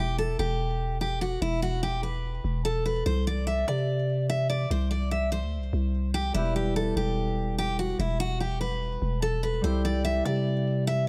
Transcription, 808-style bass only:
0.00 0.37 E1 loud
0.39 1.38 E1 loud
1.42 2.40 E1 loud
2.44 3.04 E1 loud
3.06 3.65 C2 loud
3.68 4.66 C3 loud
4.71 5.45 C2 loud
5.43 5.60 D2 loud
5.58 5.72 C2 loud
5.73 6.32 C2 loud
6.35 6.94 E1 loud
6.97 7.95 E1 loud
7.99 8.98 E1 loud
9.02 9.61 E1 loud
9.64 10.23 C2 loud
10.25 11.08 C3 loud

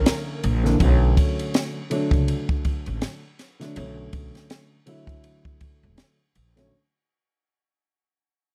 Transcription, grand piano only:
0.00 0.42 D3 medium
0.00 0.43 E3 medium
0.00 0.43 A#3 medium
0.00 0.44 C#4 medium
0.63 0.77 D3 medium
0.63 0.78 E3 medium
0.63 0.78 A#3 medium
0.63 0.79 D4 loud
0.79 1.77 D3 medium
0.79 1.78 F#3 medium
0.79 1.78 A3 medium
0.79 0.88 C4 medium
0.88 1.82 C#4 medium
1.90 3.20 D3 medium
1.90 3.20 F#3 medium
1.90 3.21 A3 medium
1.90 3.21 D4 loud
3.59 3.74 D3 medium
3.59 3.74 F#3 medium
3.59 3.74 A3 medium
3.59 3.75 D4 medium
3.75 3.83 C#3 medium
3.75 4.74 F#3 medium
3.75 4.74 A3 medium
3.75 4.75 C#4 medium
3.82 4.77 D3 medium
4.86 6.16 D3 medium
4.86 6.16 F#3 medium
4.86 6.17 A3 medium
4.86 6.17 E4 loud
6.56 6.70 D3 medium
6.56 6.70 F#3 medium
6.56 6.71 A3 medium
6.56 6.71 C#4 loud

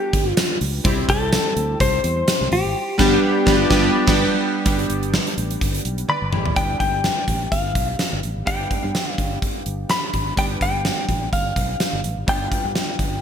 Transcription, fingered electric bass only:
0.13 0.31 G1 medium
0.61 0.79 C#2 medium
0.85 1.03 C2 loud
1.09 1.36 C2 loud
1.56 1.74 D2 medium
1.80 1.98 C2 loud
2.04 2.22 E2 loud
2.41 2.49 C2 medium
2.52 2.62 A1 medium
2.65 2.73 G#1 medium
2.99 3.16 G1 loud
3.47 3.63 G1 loud
3.71 3.87 G1 loud
4.08 4.23 G1 loud
4.66 4.84 G1 loud
4.90 5.18 G1 medium
5.38 5.55 A1 medium
5.61 5.79 G1 medium
5.85 6.03 B1 medium
6.22 6.30 G1 medium
6.33 6.43 A1 medium
6.46 6.54 G#1 medium
6.56 6.74 G1 medium
6.80 7.08 G1 medium
7.28 7.46 A1 medium
7.52 7.75 G1 medium
7.75 7.93 B1 medium
8.13 8.21 G1 medium
8.23 8.33 A1 medium
8.36 8.44 G#1 medium
8.47 8.65 G1 medium
8.84 8.92 G2 medium
9.18 9.36 G1 medium
9.66 9.84 G1 medium
10.14 10.32 G#1 medium
10.37 10.55 G1 medium
10.61 10.89 G1 medium
11.09 11.27 A1 medium
11.33 11.51 G1 medium
11.56 11.74 B1 medium
11.93 12.01 G1 medium
12.04 12.14 A1 medium
12.17 12.25 G#1 medium
12.28 12.46 G1 medium
12.64 12.73 G2 medium
12.99 13.17 G1 medium

